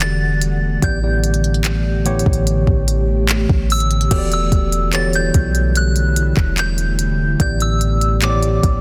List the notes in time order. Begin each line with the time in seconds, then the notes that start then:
Already playing: E1 D3 E3 G3 A3 B3 F#4 G4 A4 D5 F#5
0.00 A6, clap, closed hi-hat
0.42 closed hi-hat
0.82 A1 A2 E3 A3 B3 G4 D5 G6, kick, closed hi-hat
1.02 A2 E3 B3 G4 D5
1.24 closed hi-hat
1.34 closed hi-hat
1.44 closed hi-hat
1.54 closed hi-hat
1.64 clap, closed hi-hat
2.05 A2 E3 B3 G4 C#5, closed hi-hat
2.19 closed hi-hat
2.26 A1, kick
2.33 closed hi-hat
2.47 closed hi-hat
2.67 A1, kick
2.88 closed hi-hat
3.29 clap, closed hi-hat
3.49 A1, kick
3.70 E6, closed hi-hat, open hi-hat
3.80 closed hi-hat
3.91 closed hi-hat
4.01 closed hi-hat
4.10 E1 D3 E3 G3 A3 B3 E4 F#4 G4 A4 C#5, kick, closed hi-hat, crash
4.19 D5
4.32 E6, closed hi-hat
4.52 E1, kick, closed hi-hat
4.72 closed hi-hat
4.93 E3 B3 F#4 G4 A4 C#5 A6, clap, closed hi-hat
5.13 G6, closed hi-hat
5.34 B1, kick, closed hi-hat
5.55 closed hi-hat
5.76 F#6, closed hi-hat
5.96 closed hi-hat
6.16 closed hi-hat
6.37 E1, kick, clap
6.58 G6, clap, closed hi-hat
6.78 closed hi-hat
6.99 closed hi-hat
7.39 A1 A2 E3 B3 G4 D5 G6, kick, closed hi-hat
7.60 E6, closed hi-hat
7.81 closed hi-hat
8.01 closed hi-hat
8.21 A2 E3 B3 G4 C#5 D6, clap, closed hi-hat
8.30 D5
8.43 closed hi-hat
8.63 A1, kick, closed hi-hat